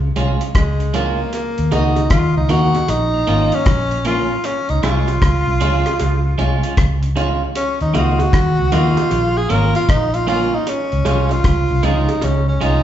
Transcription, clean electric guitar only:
0.16 0.41 G#3 medium
0.16 0.41 C#4 medium
0.16 0.42 F4 medium
0.94 1.18 G#3 medium
0.94 1.19 C#4 medium
0.94 1.19 F4 medium
1.71 1.96 A#3 medium
1.71 1.97 D#4 medium
1.71 1.97 F#4 medium
2.49 2.74 A#3 medium
2.49 2.74 D#4 loud
2.49 2.75 F#4 medium
3.27 3.52 A#3 medium
3.27 3.52 C#4 medium
3.27 3.53 F4 medium
4.05 4.30 A#3 medium
4.05 4.30 C#4 medium
4.05 4.30 F4 medium
4.83 5.08 G#3 medium
4.83 5.08 C#4 medium
4.83 5.08 F4 medium
5.61 5.85 G#3 medium
5.61 5.86 C#4 loud
5.61 5.86 F4 loud
6.38 6.63 G#3 medium
6.38 6.63 C#4 medium
6.38 6.62 F4 medium
6.63 6.75 G#3 soft
6.63 6.75 C#4 soft
6.63 6.74 F4 medium
7.16 7.41 G#3 medium
7.16 7.41 C#4 medium
7.16 7.41 F4 loud
7.94 8.19 A#3 medium
7.94 8.19 D#4 loud
7.94 8.19 F#4 medium
8.72 8.97 A#3 loud
8.72 8.97 D#4 loud
8.72 8.97 F#4 loud
9.50 9.74 A#3 medium
9.50 9.75 C#4 medium
9.50 9.75 F4 medium
10.27 10.52 A#3 medium
10.27 10.52 C#4 medium
10.27 10.53 F4 loud
11.05 11.30 G#3 medium
11.05 11.30 C#4 medium
11.05 11.31 F4 medium
11.83 12.08 G#3 medium
11.83 12.08 C#4 medium
11.83 12.09 F4 medium
12.61 12.83 G#3 medium
12.61 12.83 C#4 medium
12.61 12.83 F4 loud

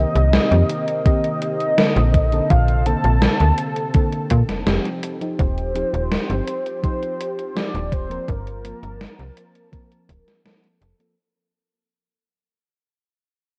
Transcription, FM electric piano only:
0.00 0.47 D#3 medium
0.00 0.47 A#3 medium
0.00 0.47 C4 medium
0.00 0.48 G4 medium
0.51 1.01 D#3 medium
0.51 1.01 A#3 medium
0.51 1.01 C4 medium
0.51 1.02 G4 medium
1.05 1.73 D#3 loud
1.05 1.73 A#3 medium
1.05 1.74 C4 medium
1.05 1.74 G4 loud
1.77 2.27 D3 medium
1.77 2.28 A#3 medium
1.77 2.28 C4 medium
1.77 2.28 A4 loud
2.32 2.82 D3 medium
2.32 2.82 A#3 medium
2.32 2.82 C4 medium
2.32 2.83 A4 medium
2.86 3.36 D3 medium
2.86 3.36 A#3 medium
2.86 3.36 C4 medium
2.86 3.37 A4 medium
3.40 3.90 D3 medium
3.40 3.90 A#3 medium
3.40 3.90 C4 medium
3.40 3.91 A4 medium
3.94 4.62 D3 loud
3.94 4.62 A#3 medium
3.94 4.63 C4 medium
3.94 4.63 A4 loud
4.66 5.16 F3 medium
4.66 5.17 C4 medium
4.66 5.17 D#4 medium
4.66 5.17 G4 loud
5.21 5.71 F3 medium
5.21 5.71 C4 medium
5.21 5.71 D#4 medium
5.21 5.71 G4 medium
5.74 6.25 F3 medium
5.74 6.25 C4 medium
5.74 6.25 D#4 medium
5.74 6.26 G4 medium
6.29 6.79 F3 medium
6.29 6.80 C4 medium
6.29 6.80 D#4 medium
6.29 6.80 G4 medium
6.82 7.51 F3 loud
6.82 7.51 C4 medium
6.82 7.52 D#4 medium
6.82 7.52 G4 loud
7.55 8.06 F3 medium
7.55 8.06 C4 medium
7.55 8.06 D#4 medium
7.55 8.06 G4 loud
8.09 8.60 F3 medium
8.09 8.60 A#3 medium
8.09 8.60 C4 medium
8.09 8.60 A#4 medium
8.63 9.14 F3 medium
8.63 9.14 A#3 medium
8.63 9.14 C4 medium
8.63 9.15 A#4 medium
9.18 9.68 F3 medium
9.18 9.68 A#3 medium
9.18 9.69 C4 medium
9.18 9.69 A#4 medium
9.72 10.40 F3 loud
9.72 10.41 A#3 medium
9.72 10.41 C4 medium
9.72 10.41 A#4 loud
10.44 10.95 F3 medium
10.44 10.95 A#3 medium
10.44 10.95 C4 medium
10.44 10.96 A4 loud
10.99 11.15 F3 medium
10.99 11.15 A#3 medium
10.99 11.15 C4 medium
10.99 11.16 A4 medium

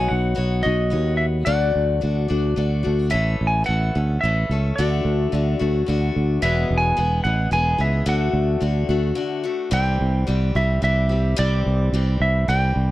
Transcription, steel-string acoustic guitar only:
0.00 0.33 B3 medium
0.00 0.34 D#4 medium
0.00 0.35 F#4 medium
0.00 0.36 C#5 medium
0.35 0.64 B3 medium
0.35 0.64 D#4 medium
0.35 0.63 F#4 medium
0.35 0.62 C#5 medium
0.63 0.90 D#4 soft
0.63 0.90 F#4 soft
0.63 0.91 C#5 soft
0.90 1.46 B3 medium
0.90 1.46 D#4 soft
0.90 1.45 F#4 medium
0.90 1.46 C#5 medium
1.46 2.02 D3 medium
1.46 2.02 F#3 medium
1.46 2.00 A3 medium
1.46 2.01 D4 medium
1.46 2.01 F#4 medium
1.46 2.02 D5 medium
2.01 2.29 A3 medium
2.01 2.28 D4 medium
2.01 2.29 F#4 medium
2.01 2.27 D5 medium
2.28 2.55 A3 soft
2.28 2.56 D4 soft
2.28 2.56 F#4 soft
2.28 2.57 D5 medium
2.56 2.84 A3 medium
2.56 2.83 D4 medium
2.56 2.82 F#4 medium
2.56 2.82 D5 medium
2.83 3.09 A3 soft
2.83 3.10 D4 soft
2.83 3.11 F#4 soft
2.83 3.11 D5 soft
3.10 3.66 A2 medium
3.10 3.63 E3 medium
3.10 3.65 A3 medium
3.10 3.65 C#4 medium
3.10 3.66 A4 medium
3.64 3.93 E3 medium
3.64 3.94 A3 medium
3.64 3.94 C#4 medium
3.64 3.94 A4 medium
3.95 4.23 A3 soft
3.95 4.23 C#4 soft
3.95 4.23 A4 soft
4.23 4.50 E3 medium
4.23 4.51 A3 soft
4.23 4.51 C#4 medium
4.23 4.50 A4 medium
4.51 4.78 A3 soft
4.51 4.79 C#4 soft
4.51 4.78 A4 soft
4.78 5.31 D3 medium
4.78 5.32 A3 medium
4.78 5.33 D4 medium
4.78 5.34 F#4 medium
5.32 5.60 D3 soft
5.32 5.60 A3 medium
5.32 5.59 D4 medium
5.32 5.58 F#4 medium
5.59 5.87 A3 soft
5.59 5.87 D4 soft
5.59 5.87 F#4 medium
5.86 6.42 D3 medium
5.86 6.42 A3 medium
5.86 6.43 D4 medium
5.86 6.43 F#4 medium
6.42 6.97 E2 medium
6.42 6.97 B2 medium
6.42 6.96 E3 medium
6.42 6.95 G#3 medium
6.42 6.96 B3 medium
6.42 6.97 G#4 medium
6.97 7.24 E3 soft
6.97 7.24 G#3 medium
6.97 7.23 B3 medium
6.97 7.23 G#4 medium
7.24 7.50 E3 soft
7.24 7.51 G#3 soft
7.24 7.51 B3 soft
7.24 7.52 G#4 soft
7.51 7.79 E3 medium
7.51 7.79 G#3 medium
7.51 7.78 B3 medium
7.51 7.77 G#4 medium
7.78 8.05 E3 soft
7.78 8.06 G#3 soft
7.78 8.06 B3 soft
7.78 8.06 G#4 soft
8.06 8.59 D3 medium
8.06 8.60 A3 medium
8.06 8.61 D4 medium
8.06 8.61 F#4 medium
8.60 8.89 D3 medium
8.60 8.89 A3 medium
8.60 8.89 D4 medium
8.60 8.88 F#4 medium
8.89 9.14 A3 soft
8.89 9.16 D4 soft
8.89 9.16 F#4 medium
9.15 9.44 D3 medium
9.15 9.44 A3 medium
9.15 9.44 D4 medium
9.15 9.42 F#4 medium
9.44 9.71 A3 soft
9.44 9.72 D4 medium
9.44 9.72 F#4 medium
9.71 10.27 C3 medium
9.71 10.26 E3 medium
9.71 10.27 G3 medium
9.71 10.28 C4 medium
9.71 10.28 G4 medium
10.27 10.55 E3 medium
10.27 10.55 G3 medium
10.27 10.55 C4 medium
10.27 10.54 G4 medium
10.55 10.82 G3 soft
10.55 10.83 C4 soft
10.55 10.83 G4 medium
10.82 11.10 E3 medium
10.82 11.10 G3 medium
10.82 11.09 C4 medium
10.82 11.08 G4 medium
11.09 11.36 G3 soft
11.09 11.36 C4 soft
11.09 11.37 G4 soft
11.36 11.92 C3 medium
11.36 11.92 E3 medium
11.36 11.94 G3 medium
11.36 11.93 C4 loud
11.36 11.95 G4 medium
11.94 12.47 E3 medium
11.94 12.49 G3 medium
11.94 12.49 C4 medium
11.94 12.49 G4 medium
12.48 12.91 E3 medium
12.48 12.91 G3 medium
12.48 12.91 C4 medium
12.48 12.91 G4 medium

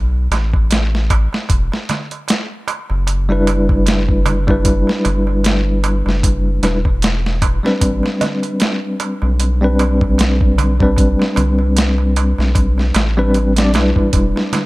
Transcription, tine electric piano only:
3.29 4.43 G3 medium
3.29 4.43 D4 medium
3.29 4.44 E4 medium
3.29 4.44 B4 loud
4.47 6.58 G3 medium
4.47 6.59 D4 medium
4.47 6.60 E4 medium
4.47 6.60 B4 loud
6.63 6.77 G3 medium
6.63 6.77 D4 medium
6.63 6.77 E4 medium
6.63 6.78 B4 medium
7.63 9.56 G3 medium
7.63 9.57 C4 medium
7.63 9.57 D4 medium
7.63 9.58 B4 medium
9.61 10.75 G3 medium
9.61 10.75 C4 medium
9.61 10.76 D4 medium
9.61 10.76 B4 medium
10.80 12.90 G3 medium
10.80 12.91 C4 medium
10.80 12.92 D4 medium
10.80 12.92 B4 medium
13.17 13.51 G3 medium
13.17 13.52 C4 medium
13.17 13.52 D4 medium
13.17 13.52 B4 loud
13.57 13.70 G3 medium
13.57 13.70 C4 medium
13.57 13.70 D4 medium
13.57 13.71 D5 medium
13.74 14.66 D4 medium
13.74 14.66 E4 medium
13.74 14.66 B4 medium

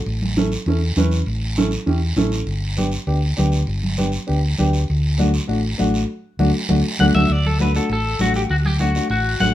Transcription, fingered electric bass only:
0.06 0.55 A1 loud
0.66 0.91 E2 medium
0.96 1.21 E2 loud
1.27 1.75 A1 loud
1.87 2.11 E2 medium
2.16 2.41 A1 medium
2.47 2.95 G1 loud
3.07 3.32 D2 medium
3.38 3.62 D2 loud
3.67 4.16 G1 loud
4.29 4.53 D2 medium
4.59 4.83 D2 medium
4.90 5.38 D2 loud
5.49 5.73 A1 medium
5.79 6.03 A1 loud
6.39 6.50 D2 loud
6.70 6.81 D2 medium
6.99 7.11 D2 medium
7.14 7.26 D2 medium
7.29 7.78 D2 medium
7.90 8.14 A1 medium
8.19 8.44 A1 medium
8.50 8.98 D2 medium
9.10 9.34 A1 medium
9.40 9.54 A1 loud

